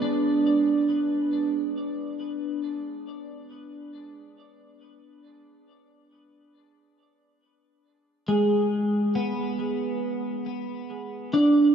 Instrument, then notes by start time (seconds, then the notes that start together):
clean electric guitar
Already playing: B3 C#5 D5
0.02 D4
8.28 G#3
9.15 B3
11.33 D4 D5